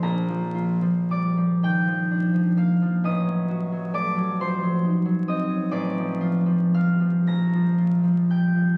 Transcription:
X:1
M:6/8
L:1/16
Q:3/8=41
K:Bb
V:1 name="Harp"
[DBb]4 [dd']2 [gg']4 [ff']2 | [ee']4 [dd']2 [cc']4 [ee']2 | [dd']4 [ff']2 [bb']4 [gg']2 |]
V:2 name="Harp" clef=bass
[B,,,F,B,] F, F F, G, F, E, F, D F, B, F, | A,,, ^F, ^F F, A, F, =F, ^F, E F, C F, | A,,, F, F F, G, F, B,,, F, F F, G, F, |]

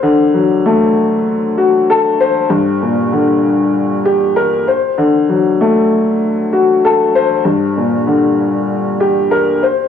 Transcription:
X:1
M:4/4
L:1/8
Q:"Swing 16ths" 1/4=97
K:Gm
V:1 name="Upright piano"
[D,c] ^F, A,3 ^F A c | G,, B,, D,3 G B c | D, ^F, A,3 ^F A c | G,, B,, D,3 G B c |]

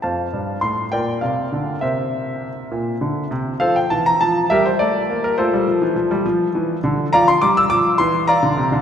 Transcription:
X:1
M:6/8
L:1/16
Q:3/8=68
K:F
V:1 name="Grand piano"
[cfa]4 c'2 [Bdg]2 [Bdf]4 | [Bce]8- [Bce]2 z2 | [Acf] g a b a2 [GBe] c d3 B | [FAc]8- [FAc]2 z2 |
[dfb] c' d' e' d'2 c'2 [dfb]4 |]
V:2 name="Grand piano" clef=bass
F,,2 G,,2 A,,2 B,,2 C,2 D,2 | C,6 B,,2 D,2 C,2 | F,2 E,2 F,2 G,2 A,2 B,2 | A, G, F, E, F, G, F,2 E,2 D,2 |
F,2 G,2 F,2 E,3 D, C, D, |]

